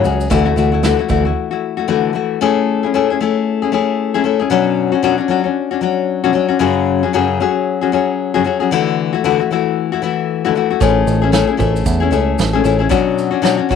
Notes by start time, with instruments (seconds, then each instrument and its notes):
0.04 tine electric piano C#2, nylon-string guitar F#3 C#4 F#4 G#4, shaker
0.21 shaker
0.30 tine electric piano D2, nylon-string guitar D3 E3 A3 E4 F#4, kick, shaker
0.45 nylon-string guitar A3 E4 F#4
0.56 tine electric piano D2, nylon-string guitar E3 A3 E4 F#4, shaker
0.72 nylon-string guitar A3 E4 F#4
0.83 nylon-string guitar D3 E3 A3 E4 F#4, snare, shaker
0.99 nylon-string guitar A3 E4 F#4
1.08 tine electric piano D2, nylon-string guitar E3 A3 E4 F#4, kick, shaker
1.25 nylon-string guitar A3 E4 F#4
1.51 nylon-string guitar A3 E4 F#4
1.77 nylon-string guitar A3 E4 F#4
1.88 nylon-string guitar D3 E3 A3 E4 F#4
2.13 nylon-string guitar E3 A3 E4 F#4
2.41 nylon-string guitar A3 C#4 E4 G#4
2.83 nylon-string guitar C#4 E4 G#4
2.94 nylon-string guitar A3 C#4 E4 G#4
3.10 nylon-string guitar C#4 E4 G#4
3.21 nylon-string guitar A3 C#4 E4 G#4
3.62 nylon-string guitar C#4 E4 G#4
3.72 nylon-string guitar A3 C#4 E4 G#4
4.14 nylon-string guitar A3 C#4 E4 G#4
4.24 nylon-string guitar A3 C#4 E4 G#4
4.39 nylon-string guitar C#4 E4 G#4
4.50 nylon-string guitar B2 F#3 C#4 D4 F#4
4.92 nylon-string guitar C#4 D4 F#4
5.02 nylon-string guitar B2 F#3 C#4 D4 F#4
5.18 nylon-string guitar C#4 D4 F#4
5.28 nylon-string guitar F#3 C#4 D4 F#4
5.44 nylon-string guitar C#4 D4 F#4
5.71 nylon-string guitar C#4 D4 F#4
5.81 nylon-string guitar F#3 C#4 D4 F#4
6.24 nylon-string guitar B2 F#3 C#4 D4 F#4
6.33 nylon-string guitar F#3 C#4 D4 F#4
6.48 nylon-string guitar C#4 D4 F#4
6.59 nylon-string guitar F#2 C#3 F#3 C#4 F#4 G#4
7.03 nylon-string guitar F#3 C#4 F#4 G#4
7.13 nylon-string guitar F#2 C#3 F#3 C#4 F#4 G#4
7.40 nylon-string guitar F#3 C#4 F#4 G#4
7.81 nylon-string guitar F#3 C#4 F#4 G#4
7.92 nylon-string guitar F#3 C#4 F#4 G#4
8.34 nylon-string guitar F#2 C#3 F#3 C#4 F#4 G#4
8.44 nylon-string guitar F#3 C#4 F#4 G#4
8.60 nylon-string guitar F#3 C#4 F#4 G#4
8.71 nylon-string guitar D3 E3 A3 E4 F#4
9.13 nylon-string guitar A3 E4 F#4
9.24 nylon-string guitar D3 E3 A3 E4 F#4
9.40 nylon-string guitar A3 E4 F#4
9.51 nylon-string guitar E3 A3 E4 F#4
9.92 nylon-string guitar A3 E4 F#4
10.02 nylon-string guitar E3 A3 E4 F#4
10.45 nylon-string guitar D3 E3 A3 E4 F#4
10.55 nylon-string guitar E3 A3 E4 F#4
10.70 nylon-string guitar A3 E4 F#4
10.80 tine electric piano A1, nylon-string guitar A3 C#4 E4 G#4, kick, shaker
11.07 tine electric piano A1, shaker
11.22 nylon-string guitar C#4 E4 G#4
11.32 nylon-string guitar A3 C#4 E4 G#4, snare, shaker
11.48 nylon-string guitar C#4 E4 G#4
11.57 tine electric piano A1, nylon-string guitar A3 C#4 E4 G#4, kick, shaker
11.76 shaker
11.86 tine electric piano E2, kick, shaker
12.00 nylon-string guitar C#4 E4 G#4
12.11 tine electric piano C#2, nylon-string guitar A3 C#4 E4 G#4, shaker
12.38 tine electric piano A1, snare, shaker
12.53 nylon-string guitar A3 C#4 E4 G#4
12.64 tine electric piano A1, nylon-string guitar A3 C#4 E4 G#4, shaker
12.79 nylon-string guitar C#4 E4 G#4
12.89 nylon-string guitar B2 F#3 C#4 D4 F#4, kick, shaker
13.18 shaker
13.31 nylon-string guitar C#4 D4 F#4
13.42 nylon-string guitar B2 F#3 C#4 D4 F#4, snare, shaker
13.57 nylon-string guitar C#4 D4 F#4
13.69 nylon-string guitar F#3 C#4 D4 F#4, kick, shaker